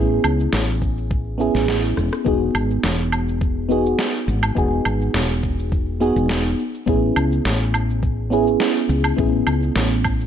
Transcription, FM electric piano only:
0, 0, Header, 1, 2, 480
1, 0, Start_track
1, 0, Tempo, 576923
1, 1881, Time_signature, 4, 2, 24, 8
1, 8541, End_track
2, 0, Start_track
2, 0, Title_t, "FM electric piano"
2, 0, Program_c, 0, 5
2, 0, Control_c, 0, 64, 127
2, 0, Note_on_c, 0, 59, 83
2, 0, Note_on_c, 0, 61, 72
2, 0, Note_on_c, 0, 64, 76
2, 0, Note_on_c, 0, 68, 91
2, 1128, Note_off_c, 0, 59, 0
2, 1132, Note_off_c, 0, 61, 0
2, 1136, Note_off_c, 0, 64, 0
2, 1140, Note_off_c, 0, 68, 0
2, 1146, Note_on_c, 0, 59, 84
2, 1156, Note_on_c, 0, 61, 76
2, 1165, Note_on_c, 0, 64, 76
2, 1173, Note_on_c, 0, 68, 91
2, 1847, Note_off_c, 0, 59, 0
2, 1851, Note_off_c, 0, 61, 0
2, 1856, Note_off_c, 0, 64, 0
2, 1860, Note_off_c, 0, 68, 0
2, 1869, Note_on_c, 0, 59, 86
2, 1877, Note_on_c, 0, 63, 74
2, 1885, Note_on_c, 0, 66, 75
2, 1893, Control_c, 0, 64, 0
2, 1895, Note_on_c, 0, 68, 89
2, 2027, Control_c, 0, 64, 127
2, 3048, Note_off_c, 0, 59, 0
2, 3052, Note_off_c, 0, 63, 0
2, 3056, Note_off_c, 0, 66, 0
2, 3061, Note_off_c, 0, 68, 0
2, 3067, Note_on_c, 0, 59, 88
2, 3076, Note_on_c, 0, 63, 75
2, 3085, Note_on_c, 0, 66, 81
2, 3094, Note_on_c, 0, 68, 90
2, 3767, Note_off_c, 0, 59, 0
2, 3771, Note_off_c, 0, 63, 0
2, 3776, Note_off_c, 0, 66, 0
2, 3780, Note_off_c, 0, 68, 0
2, 3787, Note_on_c, 0, 59, 84
2, 3795, Note_on_c, 0, 63, 75
2, 3806, Note_on_c, 0, 66, 71
2, 3813, Note_on_c, 0, 68, 92
2, 4967, Note_off_c, 0, 59, 0
2, 4971, Note_off_c, 0, 63, 0
2, 4976, Note_off_c, 0, 66, 0
2, 4980, Note_off_c, 0, 68, 0
2, 4995, Note_on_c, 0, 59, 85
2, 4997, Note_on_c, 0, 63, 84
2, 5003, Note_on_c, 0, 66, 83
2, 5005, Note_on_c, 0, 68, 101
2, 5465, Note_off_c, 0, 59, 0
2, 5466, Note_off_c, 0, 63, 0
2, 5469, Note_off_c, 0, 66, 0
2, 5470, Note_off_c, 0, 68, 0
2, 5491, Control_c, 0, 64, 0
2, 5659, Control_c, 0, 64, 127
2, 5710, Note_on_c, 0, 59, 87
2, 5719, Note_on_c, 0, 61, 76
2, 5727, Note_on_c, 0, 64, 76
2, 5735, Note_on_c, 0, 68, 87
2, 6888, Note_off_c, 0, 59, 0
2, 6893, Note_off_c, 0, 61, 0
2, 6897, Note_off_c, 0, 64, 0
2, 6901, Note_off_c, 0, 68, 0
2, 6908, Note_on_c, 0, 59, 88
2, 6916, Note_on_c, 0, 61, 77
2, 6924, Note_on_c, 0, 64, 83
2, 6933, Note_on_c, 0, 68, 94
2, 7608, Note_off_c, 0, 59, 0
2, 7611, Note_off_c, 0, 61, 0
2, 7616, Note_off_c, 0, 64, 0
2, 7620, Note_off_c, 0, 68, 0
2, 7626, Note_on_c, 0, 59, 84
2, 7635, Note_on_c, 0, 61, 77
2, 7644, Note_on_c, 0, 64, 77
2, 7653, Note_on_c, 0, 68, 86
2, 8541, Note_off_c, 0, 59, 0
2, 8541, Note_off_c, 0, 61, 0
2, 8541, Note_off_c, 0, 64, 0
2, 8541, Note_off_c, 0, 68, 0
2, 8541, End_track
0, 0, End_of_file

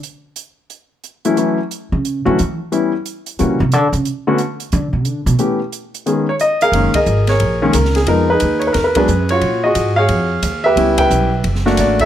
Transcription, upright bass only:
0, 0, Header, 1, 3, 480
1, 0, Start_track
1, 0, Tempo, 335196
1, 73, Time_signature, 4, 2, 24, 8
1, 17260, End_track
2, 0, Start_track
2, 0, Title_t, "Upright bass"
2, 0, Program_c, 0, 32
2, 2753, Note_on_c, 0, 49, 84
2, 3205, Note_off_c, 0, 49, 0
2, 3240, Note_on_c, 0, 50, 94
2, 3414, Note_off_c, 0, 50, 0
2, 3434, Note_on_c, 0, 52, 98
2, 3612, Note_off_c, 0, 52, 0
2, 4875, Note_on_c, 0, 49, 88
2, 5149, Note_off_c, 0, 49, 0
2, 5158, Note_on_c, 0, 48, 96
2, 5344, Note_off_c, 0, 48, 0
2, 5344, Note_on_c, 0, 50, 108
2, 5612, Note_off_c, 0, 50, 0
2, 5620, Note_on_c, 0, 49, 90
2, 5800, Note_off_c, 0, 49, 0
2, 6770, Note_on_c, 0, 50, 96
2, 7048, Note_off_c, 0, 50, 0
2, 7057, Note_on_c, 0, 47, 74
2, 7238, Note_off_c, 0, 47, 0
2, 7238, Note_on_c, 0, 50, 102
2, 7528, Note_off_c, 0, 50, 0
2, 7537, Note_on_c, 0, 47, 98
2, 7647, Note_off_c, 0, 47, 0
2, 9620, Note_on_c, 0, 30, 80
2, 9915, Note_off_c, 0, 30, 0
2, 10117, Note_on_c, 0, 32, 95
2, 10588, Note_off_c, 0, 32, 0
2, 10605, Note_on_c, 0, 34, 87
2, 11073, Note_off_c, 0, 34, 0
2, 11085, Note_on_c, 0, 37, 94
2, 11549, Note_off_c, 0, 37, 0
2, 11558, Note_on_c, 0, 41, 80
2, 12031, Note_off_c, 0, 41, 0
2, 12054, Note_on_c, 0, 39, 94
2, 12520, Note_off_c, 0, 39, 0
2, 12527, Note_on_c, 0, 40, 87
2, 12997, Note_off_c, 0, 40, 0
2, 13008, Note_on_c, 0, 42, 93
2, 13475, Note_off_c, 0, 42, 0
2, 13483, Note_on_c, 0, 46, 82
2, 13957, Note_off_c, 0, 46, 0
2, 13968, Note_on_c, 0, 44, 96
2, 14440, Note_off_c, 0, 44, 0
2, 14449, Note_on_c, 0, 41, 83
2, 14922, Note_off_c, 0, 41, 0
2, 14930, Note_on_c, 0, 39, 87
2, 15400, Note_off_c, 0, 39, 0
2, 15409, Note_on_c, 0, 37, 74
2, 15884, Note_off_c, 0, 37, 0
2, 15903, Note_on_c, 0, 35, 90
2, 16373, Note_off_c, 0, 35, 0
2, 16383, Note_on_c, 0, 30, 80
2, 16854, Note_off_c, 0, 30, 0
2, 16876, Note_on_c, 0, 33, 85
2, 17260, Note_off_c, 0, 33, 0
2, 17260, End_track
3, 0, Start_track
3, 0, Title_t, "Muted upright bass strokes"
3, 9937, Note_on_c, 9, 29, 35
3, 10080, Note_off_c, 9, 29, 0
3, 17260, End_track
0, 0, End_of_file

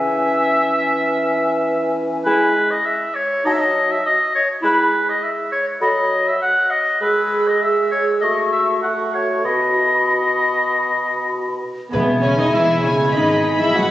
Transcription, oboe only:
0, 0, Header, 1, 2, 480
1, 0, Start_track
1, 0, Key_signature, 4, "major"
1, 0, Tempo, 595238
1, 1825, Time_signature, 4, 2, 24, 8
1, 5664, Tempo, 611621
1, 11067, End_track
2, 0, Start_track
2, 0, Title_t, "Oboe"
2, 0, Program_c, 0, 68
2, 0, Note_on_c, 0, 76, 88
2, 1551, Note_off_c, 0, 76, 0
2, 1815, Note_on_c, 0, 71, 81
2, 2183, Note_on_c, 0, 75, 82
2, 2195, Note_off_c, 0, 71, 0
2, 2303, Note_on_c, 0, 76, 68
2, 2315, Note_off_c, 0, 75, 0
2, 2538, Note_on_c, 0, 73, 80
2, 2550, Note_off_c, 0, 76, 0
2, 2785, Note_on_c, 0, 75, 76
2, 2797, Note_off_c, 0, 73, 0
2, 2842, Note_on_c, 0, 76, 63
2, 2854, Note_off_c, 0, 75, 0
2, 2894, Note_on_c, 0, 75, 72
2, 2906, Note_off_c, 0, 76, 0
2, 3156, Note_on_c, 0, 76, 76
2, 3168, Note_off_c, 0, 75, 0
2, 3267, Note_off_c, 0, 76, 0
2, 3272, Note_on_c, 0, 75, 90
2, 3503, Note_off_c, 0, 75, 0
2, 3508, Note_on_c, 0, 73, 71
2, 3614, Note_off_c, 0, 73, 0
2, 3745, Note_on_c, 0, 71, 84
2, 4107, Note_on_c, 0, 75, 73
2, 4119, Note_off_c, 0, 71, 0
2, 4219, Note_on_c, 0, 76, 69
2, 4232, Note_off_c, 0, 75, 0
2, 4448, Note_off_c, 0, 76, 0
2, 4452, Note_on_c, 0, 73, 77
2, 4561, Note_off_c, 0, 73, 0
2, 4690, Note_on_c, 0, 75, 73
2, 5065, Note_on_c, 0, 76, 67
2, 5077, Note_off_c, 0, 75, 0
2, 5171, Note_off_c, 0, 76, 0
2, 5176, Note_on_c, 0, 78, 89
2, 5407, Note_on_c, 0, 75, 73
2, 5419, Note_off_c, 0, 78, 0
2, 5648, Note_off_c, 0, 75, 0
2, 5653, Note_on_c, 0, 71, 76
2, 6018, Note_on_c, 0, 75, 65
2, 6030, Note_off_c, 0, 71, 0
2, 6133, Note_on_c, 0, 76, 65
2, 6145, Note_off_c, 0, 75, 0
2, 6360, Note_off_c, 0, 76, 0
2, 6365, Note_on_c, 0, 73, 73
2, 6474, Note_off_c, 0, 73, 0
2, 6595, Note_on_c, 0, 75, 59
2, 6706, Note_off_c, 0, 75, 0
2, 6841, Note_on_c, 0, 76, 68
2, 6951, Note_off_c, 0, 76, 0
2, 7083, Note_on_c, 0, 78, 66
2, 7328, Note_on_c, 0, 73, 52
2, 7340, Note_off_c, 0, 78, 0
2, 7566, Note_on_c, 0, 75, 61
2, 7577, Note_off_c, 0, 73, 0
2, 9267, Note_off_c, 0, 75, 0
2, 9506, Note_on_c, 0, 80, 57
2, 11067, Note_off_c, 0, 80, 0
2, 11067, End_track
0, 0, End_of_file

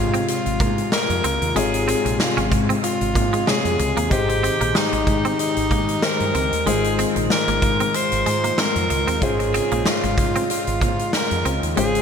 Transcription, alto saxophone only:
0, 0, Header, 1, 2, 480
1, 0, Start_track
1, 0, Tempo, 638298
1, 1172, Time_signature, 4, 2, 24, 8
1, 9038, End_track
2, 0, Start_track
2, 0, Title_t, "Alto saxophone"
2, 0, Program_c, 0, 65
2, 0, Note_on_c, 0, 65, 78
2, 213, Note_off_c, 0, 65, 0
2, 218, Note_on_c, 0, 65, 79
2, 665, Note_off_c, 0, 65, 0
2, 697, Note_on_c, 0, 70, 81
2, 1177, Note_on_c, 0, 68, 87
2, 1189, Note_off_c, 0, 70, 0
2, 1650, Note_on_c, 0, 65, 74
2, 1661, Note_off_c, 0, 68, 0
2, 1932, Note_off_c, 0, 65, 0
2, 2133, Note_on_c, 0, 65, 81
2, 2614, Note_on_c, 0, 68, 81
2, 2625, Note_off_c, 0, 65, 0
2, 3092, Note_on_c, 0, 67, 92
2, 3103, Note_off_c, 0, 68, 0
2, 3579, Note_on_c, 0, 63, 83
2, 3590, Note_off_c, 0, 67, 0
2, 4051, Note_off_c, 0, 63, 0
2, 4056, Note_on_c, 0, 63, 84
2, 4535, Note_on_c, 0, 70, 96
2, 4546, Note_off_c, 0, 63, 0
2, 5019, Note_on_c, 0, 68, 89
2, 5030, Note_off_c, 0, 70, 0
2, 5296, Note_off_c, 0, 68, 0
2, 5499, Note_on_c, 0, 70, 92
2, 5980, Note_on_c, 0, 72, 89
2, 5991, Note_off_c, 0, 70, 0
2, 6460, Note_on_c, 0, 70, 89
2, 6471, Note_off_c, 0, 72, 0
2, 6936, Note_on_c, 0, 68, 86
2, 6947, Note_off_c, 0, 70, 0
2, 7421, Note_on_c, 0, 65, 90
2, 7432, Note_off_c, 0, 68, 0
2, 7894, Note_off_c, 0, 65, 0
2, 7898, Note_on_c, 0, 65, 83
2, 8373, Note_on_c, 0, 70, 88
2, 8384, Note_off_c, 0, 65, 0
2, 8653, Note_off_c, 0, 70, 0
2, 8852, Note_on_c, 0, 68, 90
2, 9038, Note_off_c, 0, 68, 0
2, 9038, End_track
0, 0, End_of_file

